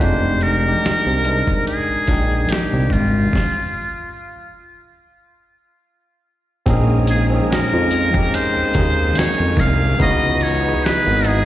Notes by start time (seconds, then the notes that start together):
0.00 F1 G#3 D4 D#4 G4 C5, kick, closed hi-hat
0.41 A#4, closed hi-hat
0.63 G#3 D4 D#4
0.68 G4
0.84 C2, snare, closed hi-hat
1.06 C2
1.24 G#3 D4 D#4, closed hi-hat
1.29 A#4
1.47 kick
1.67 G#4, closed hi-hat
1.90 A#1
2.07 A#1 G#3 D4 D#4, kick, snare, closed hi-hat
2.12 G5
2.49 G4, snare, closed hi-hat
2.73 C2
2.90 G#1 F4, kick, closed hi-hat
3.33 kick, snare
6.66 A#1 G#3 A#3 C4 C#4 D#4, kick, closed hi-hat
6.70 G#4
7.07 G#4, closed hi-hat
7.30 C4 C#4 D#4
7.35 G#4
7.51 F2 A#4, snare, closed hi-hat
7.74 F2
7.91 closed hi-hat
8.13 C4 C#4 D#4, kick
8.18 G4
8.34 C5, closed hi-hat
8.57 D#2
8.74 D#2 A#3 C#4 D#4, kick, snare, closed hi-hat
8.78 G#4
9.15 C#5, snare, closed hi-hat
9.40 F2
9.57 C2 F5, kick, closed hi-hat
9.98 C#2 E3 B3 D#4 E4 D#5, kick, closed hi-hat
10.03 F#4
10.41 C#5, closed hi-hat
10.63 B3 D#4 E4
10.67 G#4
10.85 G#1 B4, snare, closed hi-hat
11.07 G#1
11.24 B3 D#4 E4 G#4, closed hi-hat
11.29 G#4